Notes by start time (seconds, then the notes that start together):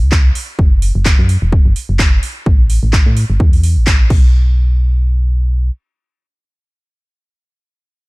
0.02 C#2
0.12 kick, clap
0.35 open hi-hat
0.59 F#1, kick
0.82 open hi-hat
0.95 F#1
1.05 kick, clap
1.19 F#2
1.29 open hi-hat
1.42 E1
1.52 kick
1.66 F#1
1.76 open hi-hat
1.89 F#1
1.99 kick, clap
2.23 open hi-hat
2.46 A1, kick
2.70 open hi-hat
2.83 A1
2.93 kick, clap
3.06 A2
3.17 open hi-hat
3.30 G1
3.40 E2, kick
3.53 open hi-hat
3.63 open hi-hat
3.77 A1
3.87 kick, clap
4.10 B1, kick, crash